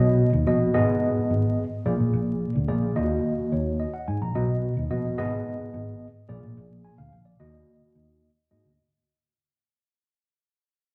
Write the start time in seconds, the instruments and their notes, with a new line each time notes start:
Already playing: fingered electric bass B1, tine electric piano B2 B3 F#4 D#5
0.33 fingered electric bass D#2
0.47 fingered electric bass A#1, tine electric piano B3 F#4 D#5
0.74 fingered electric bass G#1, tine electric piano G#2 B3 G#4 D#5
1.17 muted fingered electric bass stroke
1.30 fingered electric bass G#1
1.86 fingered electric bass A#1, tine electric piano A#2 A#3 G#4 D5
1.99 fingered electric bass A1
2.13 fingered electric bass A#1
2.55 fingered electric bass D2
2.68 fingered electric bass A#1, tine electric piano A#3 G#4 D5
2.96 fingered electric bass D#2, tine electric piano D#3 A#3 F4 D#5
3.03 tine electric piano F#4
3.38 muted fingered electric bass stroke
3.52 fingered electric bass D#2, tine electric piano C#5
3.80 tine electric piano D#5
3.94 tine electric piano F#5
4.08 fingered electric bass G#2, tine electric piano G#5
4.22 fingered electric bass A#1, tine electric piano A#5
4.35 fingered electric bass B1, tine electric piano B2 B3 F#4 D#5
4.77 fingered electric bass D#2
4.91 fingered electric bass A#1, tine electric piano B3 F#4 D#5
5.18 fingered electric bass G#1, tine electric piano G#2 B3 G#4 D#5
5.60 muted fingered electric bass stroke
5.74 fingered electric bass G#1
6.29 fingered electric bass A#1, tine electric piano A#2 A#3 G#4 D5
6.43 fingered electric bass A1
6.57 fingered electric bass A#1
6.84 tine electric piano G#5
6.98 fingered electric bass D2, tine electric piano F5
7.13 fingered electric bass A#1
7.25 tine electric piano D5
7.40 fingered electric bass D#2, tine electric piano D#3 A#3 F#4 D#5
7.82 muted fingered electric bass stroke
7.95 fingered electric bass D#2
8.51 fingered electric bass G#2, tine electric piano A#3 F#4 D#5
8.65 fingered electric bass D2